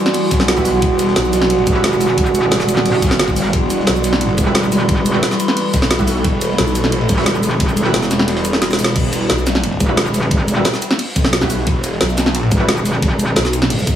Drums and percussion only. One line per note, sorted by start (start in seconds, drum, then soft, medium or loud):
0.06 snare soft
0.06 ride soft
0.14 closed hi-hat loud
0.14 open hi-hat medium
0.31 kick loud
0.31 snare loud
0.31 closed hi-hat medium
0.31 ride medium
0.31 cabasa medium
0.40 snare soft
0.40 ride soft
0.48 snare loud
0.48 closed hi-hat medium
0.48 ride medium
0.57 kick medium
0.57 cabasa soft
0.65 snare medium
0.65 open hi-hat medium
0.65 ride medium
0.65 cabasa medium
0.74 snare soft
0.82 kick loud
0.82 closed hi-hat medium
0.82 ride medium
0.99 snare soft
0.99 closed hi-hat medium
0.99 ride medium
0.99 cabasa medium
1.07 snare soft
1.16 snare loud
1.16 closed hi-hat medium
1.16 ride medium
1.25 cabasa soft
1.33 snare medium
1.33 closed hi-hat medium
1.33 ride medium
1.33 cabasa medium
1.42 snare soft
1.50 closed hi-hat medium
1.50 ride medium
1.58 ride soft
1.67 kick loud
1.67 closed hi-hat medium
1.67 ride medium
1.67 cabasa medium
1.84 snare loud
1.84 closed hi-hat medium
1.84 ride loud
1.92 cabasa soft
2.00 snare soft
2.00 open hi-hat medium
2.00 ride medium
2.00 cabasa medium
2.10 ride soft
2.18 kick loud
2.18 closed hi-hat medium
2.18 ride medium
2.26 cabasa soft
2.35 closed hi-hat medium
2.35 ride medium
2.35 cabasa medium
2.51 snare loud
2.51 closed hi-hat medium
2.51 ride loud
2.60 snare soft
2.60 cabasa soft
2.69 closed hi-hat medium
2.69 ride medium
2.69 cabasa medium
2.77 snare soft
2.77 ride soft
2.85 closed hi-hat medium
2.85 open hi-hat medium
3.02 kick loud
3.02 snare loud
3.02 closed hi-hat medium
3.02 ride medium
3.02 cabasa medium
3.10 snare soft
3.10 ride soft
3.19 snare loud
3.19 closed hi-hat medium
3.19 ride medium
3.28 kick medium
3.28 cabasa soft
3.36 snare medium
3.36 open hi-hat medium
3.36 ride medium
3.36 cabasa medium
3.45 snare soft
3.53 kick loud
3.53 closed hi-hat medium
3.53 ride medium
3.70 snare soft
3.70 closed hi-hat medium
3.70 ride medium
3.70 cabasa medium
3.79 snare soft
3.87 snare loud
3.87 closed hi-hat medium
3.87 ride medium
3.96 cabasa soft
4.04 snare medium
4.04 closed hi-hat medium
4.04 ride medium
4.04 cabasa medium
4.13 snare soft
4.21 closed hi-hat medium
4.21 ride medium
4.29 ride soft
4.38 kick loud
4.38 closed hi-hat medium
4.38 ride medium
4.38 cabasa medium
4.55 snare loud
4.55 closed hi-hat medium
4.55 ride medium
4.63 cabasa soft
4.72 snare soft
4.72 open hi-hat medium
4.72 ride medium
4.72 cabasa medium
4.81 ride soft
4.88 kick loud
4.88 closed hi-hat medium
4.88 ride medium
5.06 closed hi-hat medium
5.06 ride medium
5.06 cabasa medium
5.23 snare loud
5.23 closed hi-hat medium
5.23 ride medium
5.31 snare soft
5.31 cabasa soft
5.40 closed hi-hat medium
5.40 ride medium
5.40 cabasa medium
5.48 snare soft
5.48 ride medium
5.57 closed hi-hat medium
5.57 open hi-hat medium
5.73 kick loud
5.73 snare loud
5.73 closed hi-hat medium
5.73 ride medium
5.73 cabasa medium
5.82 snare soft
5.82 ride soft
5.91 snare loud
5.91 closed hi-hat loud
5.91 ride medium
5.99 kick medium
5.99 cabasa soft
6.07 snare medium
6.07 open hi-hat medium
6.07 ride medium
6.07 cabasa medium
6.16 snare soft
6.24 kick loud
6.24 closed hi-hat medium
6.24 ride medium
6.41 snare soft
6.41 closed hi-hat medium
6.41 ride medium
6.41 cabasa medium
6.50 snare soft
6.58 snare loud
6.58 closed hi-hat loud
6.58 ride medium
6.67 cabasa soft
6.75 snare medium
6.75 closed hi-hat medium
6.75 ride medium
6.75 cabasa medium
6.84 snare soft
6.92 closed hi-hat loud
6.92 ride medium
7.01 ride soft
7.09 kick loud
7.09 snare medium
7.09 closed hi-hat medium
7.09 ride medium
7.09 cabasa medium
7.18 snare medium
7.18 ride medium
7.21 snare loud
7.21 ride medium
7.26 snare loud
7.26 closed hi-hat medium
7.26 ride loud
7.35 cabasa soft
7.43 open hi-hat medium
7.43 ride medium
7.43 cabasa medium
7.51 ride medium
7.60 kick loud
7.60 closed hi-hat loud
7.60 ride medium
7.69 cabasa soft
7.77 closed hi-hat medium
7.77 ride medium
7.77 cabasa medium
7.94 snare loud
7.94 closed hi-hat loud
7.94 ride medium
8.03 snare soft
8.03 cabasa soft
8.11 snare soft
8.11 closed hi-hat medium
8.11 ride medium
8.11 cabasa medium
8.19 snare soft
8.19 ride soft
8.28 snare loud
8.28 closed hi-hat loud
8.28 ride medium
8.36 snare loud
8.36 ride medium
8.45 closed hi-hat medium
8.45 ride medium
8.45 cabasa medium
8.53 snare soft
8.62 snare medium
8.62 snare loud
8.62 closed hi-hat loud
8.62 ride medium
8.70 snare medium
8.70 ride medium
8.70 cabasa soft
8.79 snare medium
8.79 open hi-hat medium
8.79 ride medium
8.79 cabasa medium
8.84 snare loud
8.87 snare loud
8.87 ride medium
8.96 kick loud
8.96 closed hi-hat loud
8.96 crash loud
8.96 ride medium
9.12 snare soft
9.12 closed hi-hat medium
9.12 ride medium
9.12 cabasa medium
9.21 snare soft
9.29 snare loud
9.29 closed hi-hat loud
9.29 ride medium
9.38 cabasa soft
9.46 snare medium
9.46 snare soft
9.46 closed hi-hat medium
9.46 ride medium
9.46 cabasa medium
9.55 snare soft
9.55 snare medium
9.63 closed hi-hat loud
9.63 ride medium
9.72 ride soft
9.80 kick loud
9.80 closed hi-hat medium
9.80 ride medium
9.80 cabasa medium
9.97 snare loud
9.97 closed hi-hat loud
9.97 ride loud
10.06 cabasa soft
10.14 snare soft
10.14 open hi-hat medium
10.14 ride medium
10.14 cabasa medium
10.23 ride medium
10.31 kick loud
10.31 closed hi-hat medium
10.31 ride medium
10.48 closed hi-hat medium
10.48 ride medium
10.48 cabasa medium
10.65 snare loud
10.65 closed hi-hat medium
10.65 ride loud
10.74 snare soft
10.74 cabasa soft
10.82 closed hi-hat medium
10.82 ride medium
10.82 cabasa medium
10.91 snare soft
10.91 ride soft
10.99 closed hi-hat medium
10.99 open hi-hat medium
11.16 kick loud
11.16 closed hi-hat medium
11.16 ride medium
11.16 cabasa medium
11.24 snare soft
11.24 ride soft
11.33 snare loud
11.33 closed hi-hat medium
11.33 ride medium
11.41 kick medium
11.41 snare medium
11.41 cabasa soft
11.50 snare medium
11.50 open hi-hat medium
11.50 ride medium
11.50 cabasa medium
11.58 snare soft
11.67 kick loud
11.67 closed hi-hat medium
11.67 ride medium
11.84 snare soft
11.84 closed hi-hat medium
11.84 ride medium
11.84 cabasa medium
11.92 snare soft
12.01 snare loud
12.01 closed hi-hat medium
12.01 ride medium
12.09 cabasa soft
12.17 snare medium
12.17 snare soft
12.17 closed hi-hat medium
12.17 ride medium
12.17 cabasa medium
12.26 snare soft
12.35 closed hi-hat medium
12.35 ride medium
12.43 ride soft
12.51 kick loud
12.51 closed hi-hat medium
12.51 ride medium
12.51 cabasa medium
12.68 snare loud
12.68 closed hi-hat medium
12.68 ride medium
12.77 cabasa soft
12.86 snare soft
12.86 open hi-hat medium
12.86 ride medium
12.86 cabasa medium
12.95 ride soft
13.02 kick loud
13.02 closed hi-hat medium
13.02 ride medium
13.19 closed hi-hat medium
13.19 ride medium
13.19 cabasa medium
13.36 snare loud
13.36 closed hi-hat medium
13.36 ride medium
13.45 snare soft
13.45 cabasa soft
13.53 closed hi-hat medium
13.53 ride medium
13.53 cabasa medium
13.62 snare soft
13.62 ride soft
13.70 closed hi-hat medium
13.70 open hi-hat medium
13.79 cabasa soft
13.87 kick loud
13.87 closed hi-hat medium
13.87 ride medium
13.87 cabasa medium